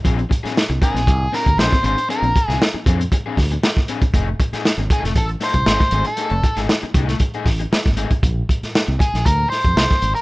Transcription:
<<
  \new Staff \with { instrumentName = "Lead electric guitar" } { \time 4/4 \key bes \major \tempo 4 = 117 r4. aes'4 bes'8 c''8 c''8 | bes'4 r2. | r4. gis'8 a'8 c''4~ c''16 a'16~ | a'8. r2. r16 |
r4. aes'8 bes'8 c''4~ c''16 bes'16 | }
  \new Staff \with { instrumentName = "Overdriven electric guitar" } { \time 4/4 \key bes \major <c' d' aes'>16 r8 <c' d' aes'>16 r8 <c' d' bes'>16 r8. <c' d' bes'>16 r16 <c' d' aes'>16 r16 <c' d' aes'>16 r16 | <c' d' aes'>16 r8 <c' d' aes'>16 r8 <c' d' aes'>16 r8 <c' d' aes'>16 r4 <c' d' aes'>16 r16 | <a ees' gis'>16 r8 <a ees' gis'>16 r8 <a ees' a'>8 r8 <a ees' a'>16 r16 <a ees' gis'>16 r16 <a ees' gis'>16 r16 | <a ees' gis'>16 r8 <a ees' gis'>16 r8 <a ees' gis'>8 r16 <a ees' gis'>16 r4 <a ees' gis'>16 r16 |
r1 | }
  \new Staff \with { instrumentName = "Fingered electric bass" } { \clef bass \time 4/4 \key bes \major bes,,8 r8. c,16 r16 bes,,16 c,8 r16 d,16 bes,,16 r16 aes,,16 r16 | r16 bes,,16 r16 c,16 r8 f,8 r8 d,8 r4 | f,,8 r8. gis,,16 r16 f,,16 a,,8 r16 c,16 gis,,16 r16 gis,,16 r16 | r16 f,,16 r16 gis,,16 r8 c,8 r8 a,,8 r16 gis,,8 r16 |
bes,,8 r8. c,16 r16 bes,,16 d,8 r16 f,16 c,16 r16 aes,,16 r16 | }
  \new DrumStaff \with { instrumentName = "Drums" } \drummode { \time 4/4 <hh bd>16 hh16 <hh bd>16 <hh sn>16 sn16 hh16 <hh bd>16 <hh sn>16 <hh bd>8 <hho sn>16 <hh bd>16 sn16 <hh bd sn>16 hh16 hh16 | hh16 hh16 <hh bd>16 <hh sn>16 sn8 <hh bd>16 hh16 <hh bd>8 <hho bd sn>16 hh16 sn16 <bd sn>16 hh16 <hh bd>16 | <hh bd>8 <hh bd>16 <hh sn>16 sn16 hh16 <hh bd>16 <hh sn>16 <hh bd>16 hh16 <hho sn>16 <hh bd>16 sn16 <bd sn>16 hh16 hh16 | hh16 hh16 <hh bd>16 <hh sn>16 sn16 hh16 <hh bd>16 <hh sn>16 <hh bd>16 hh16 <hho bd sn>16 hh16 sn16 <hh bd sn>16 hh16 <hh bd>16 |
<hh bd>8 <hh bd>16 <hh sn>16 sn8 <hh bd>16 <hh sn>16 <hh bd>8 <hho sn>16 <hh bd>16 sn16 <hh bd sn>16 hh16 hh16 | }
>>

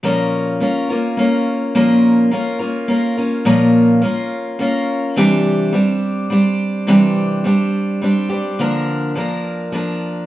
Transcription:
\new Staff \with { instrumentName = "Steel-string acoustic guitar" } { \time 3/4 \key bes \lydian \tempo 4 = 105 <bes, f bes des' f' bes'>4 <bes des' f' bes'>8 <bes des' f' bes'>8 <bes des' f' bes'>4 | <bes, f bes des' f' bes'>4 <bes des' f' bes'>8 <bes des' f' bes'>8 <bes des' f' bes'>8 <bes des' f' bes'>8 | <bes, f bes des' f' bes'>4 <bes des' f' bes'>4 <bes des' f' bes'>4 | <c e g c' d' g'>4 <g c' d' g'>4 <g c' d' g'>4 |
<c e g c' d' g'>4 <g c' d' g'>4 <g c' d' g'>8 <g c' d' g'>8 | <d f bes d' bes'>4 <f bes d' bes'>4 <f bes d' bes'>4 | }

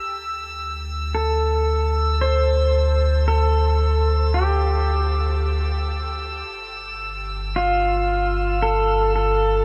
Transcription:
<<
  \new Staff \with { instrumentName = "Synth texture" } { \time 3/4 \key d \minor \tempo 4 = 56 e'''2.~ | e'''2.~ | e'''2. | }
  \new Staff \with { instrumentName = "Pedal steel guitar" } { \time 3/4 \key d \minor r4 a'4 c''4 | a'4 g'4. r8 | r4 f'4 a'8 a'8 | }
  \new Staff \with { instrumentName = "Sub bass" } { \clef bass \time 3/4 \key d \minor d,2.~ | d,2. | g,,2. | }
>>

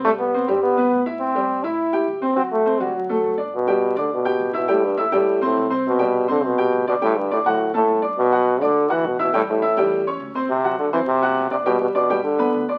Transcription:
<<
  \new Staff \with { instrumentName = "Grand piano" } { \time 4/4 \key g \major \tempo 4 = 207 <g g'>4 <c' c''>8 <g g'>4 <b b'>4 <e' e''>8~ | <e' e''>8 <g g'>4 <e' e''>4 <g' g''>4 <c' c''>8 | <fis fis'>4 <c' c''>8 <fis fis'>4 <a a'>4 <d' d''>8 | r8 <g g' g''>4 <d' d'' d'''>4 <g' g'' g'''>4 <e' e'' e'''>8 |
<g g' g''>4 <e' e'' e'''>8 <g g' g''>4 <c' c'' c'''>4 <c' c'' c'''>8~ | <c' c'' c'''>8 <g g' g''>4 <c' c'' c'''>4 <g' g'' g'''>4 <d' d'' d'''>8 | <g g' g''>4 <d' d'' d'''>8 <fis fis' fis''>4 <a a' a''>4 <d' d'' d'''>8~ | <d' d'' d'''>8 <fis fis' fis''>4 <d' d'' d'''>4 <fis' fis'' fis'''>4 <e' e'' e'''>8 |
<g g' g''>4 <e' e'' e'''>8 <g g' g''>4 <cis' cis'' cis'''>4 <c' c'' c'''>8~ | <c' c'' c'''>8 <fis fis' fis''>4 <c' c'' c'''>4 <fis' fis'' fis'''>4 <d' d'' d'''>8 | <g g' g''>4 <d' d'' d'''>8 <g g' g''>4 <b b' b''>4 <d' d'' d'''>8 | }
  \new Staff \with { instrumentName = "Trombone" } { \clef bass \time 4/4 \key g \major a8 b4 c'8 b4. r8 | c'4. e'4. r8 c'8 | c'8 a4 g8 fis4. r8 | b,4. d8 b,4. b,8 |
a,8 g,8 a,8 a,4 a,4 r8 | b,4. d8 b,4. b,8 | a,8 g,8 a,8 a,4 a,4 r8 | b,4. d4 e8 b,8 b,8 |
a,8 a,2 r4. | c4 d8 e8 c4. c8 | b,8 b,8 b,4 d4. r8 | }
  \new Staff \with { instrumentName = "Upright bass" } { \clef bass \time 4/4 \key g \major c,4. g,4. a,4~ | a,4. a,4. d,4~ | d,4. d,4. g,,4~ | g,,4. d,4. a,,4~ |
a,,4. a,4 d,8 c,4~ | c,4. c,4. d,4~ | d,4. d,4 a,,8 g,,4~ | g,,4. d,4. a,,4~ |
a,,4. e,4. d,4~ | d,4. fis,4. e,4~ | e,4. g,4 e,8 d,4 | }
>>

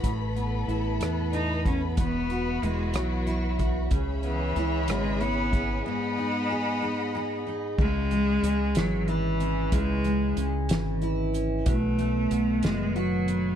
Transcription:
<<
  \new Staff \with { instrumentName = "String section" } { \time 6/8 \key cis \minor \tempo 4. = 62 << { <b' b''>2.~ | <b' b''>2. | <cis'' e'' b''>2. | <dis'' fis'' b''>2. |
r2. | r2. | r2. | } \\ { a'2. | fis'2. | gis'2.~ | gis'2. |
r2. | r2. | r2. | } >> }
  \new Staff \with { instrumentName = "Steel-string acoustic guitar" } { \time 6/8 \key cis \minor a,8 b8 e'8 b4 b8 | e,8 fis'8 e'8 fis'8 e'8 fis'8 | cis8 b8 e'8 b8 e'8 b8 | gis,8 dis'8 gis'8 dis'8 gis'8 dis'8 |
cis8 gis8 cis'8 e8 e'8 cis'8 | cis8 gis8 cis'8 e8 e'8 cis'8 | b,8 a8 b8 dis8 fis'8 b8 | }
  \new Staff \with { instrumentName = "Cello" } { \clef bass \time 6/8 \key cis \minor r2 dis'8 cis'8 | b4 gis8 fis4 r8 | r8 e4 gis8 b4 | b2~ b8 r8 |
gis4. fis8 e4 | gis4 r2 | a4. gis8 fis4 | }
  \new Staff \with { instrumentName = "Fingered electric bass" } { \clef bass \time 6/8 \key cis \minor a,,4 a,,8 e,4. | e,,4 e,,8 b,,4. | cis,4 cis,8 gis,,4. | r2. |
cis,4 cis,8 gis,,4. | cis,4 cis,8 gis,,4. | b,,4 b,,8 fis,,4. | }
  \new DrumStaff \with { instrumentName = "Drums" } \drummode { \time 6/8 <hh bd>8 hh8 hh8 <hh ss>8 hh8 <hh bd>8 | <hh bd>8 hh8 hh8 <hh ss>8 <hh ss>8 <hh bd>8 | <hh bd>8 hh8 hh8 <hh ss>8 hh8 <hh bd>8 | r4. r4. |
<cymc bd>8 hh8 hh8 <hh sn>8 hh8 hh8 | <hh bd>8 hh8 hh8 <hh sn>8 hh8 hh8 | <hh bd>8 hh8 hh8 <hh sn>8 hh8 hh8 | }
>>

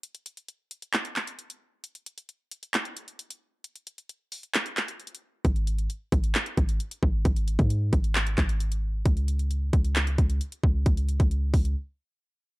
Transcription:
<<
  \new Staff \with { instrumentName = "808-style bass" } { \clef bass \time 4/4 \key cis \minor \tempo 4 = 133 r1 | r1 | r1 | gis,,4 r8 gis,,8 r8 gis,,8 r8 gis,,8 |
gis,,8. gis,8. gis,,4 gis,,4. | cis,4. cis,4 cis,8 r8 cis,8 | cis,8. cis,8. cis,8 r2 | }
  \new DrumStaff \with { instrumentName = "Drums" } \drummode { \time 4/4 hh16 hh16 hh16 hh16 hh8 hh16 hh16 <hc hh>16 hh16 <hc hh>16 hh16 hh16 hh8. | hh16 hh16 hh16 hh16 hh8 hh16 hh16 <hc hh>16 hh16 hh16 hh16 hh16 hh8. | hh16 hh16 hh16 hh16 hh8 hho16 hh16 <hc hh>16 hh16 <hc hh>16 hh16 \tuplet 3/2 { hh16 hh16 hh16 r16 r16 r16 } | <hh bd>16 hh16 hh16 hh16 hh8 <hh bd>16 hh16 <hc hh>16 hh16 <hh bd>16 hh16 hh16 hh16 bd8 |
<hh bd>16 hh16 hh16 <hh bd>16 hh8 <hh bd>16 hh16 <hc hh>16 hh16 <hc hh bd>16 hh16 hh16 hh8. | <hh bd>16 hh16 hh16 hh16 hh8 <hh bd>16 hh16 <hc hh>16 hh16 <hh bd>16 hh16 hh16 hh16 bd8 | <hh bd>16 hh16 hh16 <hh bd>16 hh8 <hho bd>16 hh16 r4 r4 | }
>>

